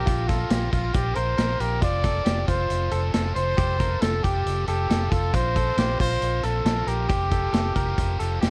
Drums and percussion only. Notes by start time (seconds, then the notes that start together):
0.07 kick, closed hi-hat
0.29 kick, snare, closed hi-hat
0.50 snare, closed hi-hat
0.73 kick, closed hi-hat
0.94 kick, closed hi-hat
1.15 closed hi-hat
1.38 snare, closed hi-hat
1.60 closed hi-hat
1.82 kick, closed hi-hat
2.04 kick, snare, closed hi-hat
2.26 snare, closed hi-hat
2.48 kick, closed hi-hat
2.70 closed hi-hat
2.91 closed hi-hat
3.14 snare, closed hi-hat
3.36 closed hi-hat
3.58 kick, closed hi-hat
3.80 kick, closed hi-hat
4.02 snare, closed hi-hat
4.24 kick, closed hi-hat
4.46 closed hi-hat
4.67 closed hi-hat
4.90 snare, closed hi-hat
5.12 kick, closed hi-hat
5.34 kick, closed hi-hat
5.56 kick, closed hi-hat
5.77 snare, closed hi-hat
6.00 kick, closed hi-hat
6.22 closed hi-hat
6.43 closed hi-hat
6.66 snare, closed hi-hat
6.88 closed hi-hat
7.10 kick, closed hi-hat
7.31 kick, closed hi-hat
7.54 snare, closed hi-hat
7.76 kick, closed hi-hat
7.98 kick, closed hi-hat
8.20 closed hi-hat
8.42 snare, closed hi-hat